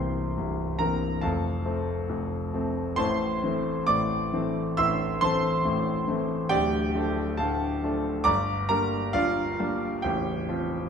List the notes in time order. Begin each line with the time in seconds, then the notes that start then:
Already playing: C1 C2 E3 A#3 C4 C5 G5 C6
0.37 C1 C2
0.79 E3 A#3 C4 A#4 A#5
1.21 F1 F2 A4 F5 A5
1.65 F3 A3 C4
2.09 F1 F2
2.53 F3 A3 C4
2.96 A1 A2 C5 A5 C6
3.44 E3 A3 C4
3.87 A1 A2 D5 D6
4.33 E3 A3 C4
4.77 A1 A2 E5 C6 E6
5.21 E3 A3 C4 C5 A5 C6
5.65 A1 A2
6.08 E3 A3 C4
6.49 D1 D2 G4 D5 G5
6.95 F3 A3 D4
7.37 D1 D2 A4 F5 A5
7.84 F3 A3 D4
8.24 G1 G2 D5 A#5 D6
8.69 G3 A#3 D4 A#4 A#5
9.13 G1 G2 F4 D5 F5
9.59 G3 A#3 D4
10.02 A0 A1 G4 G5
10.48 F3 C4 F4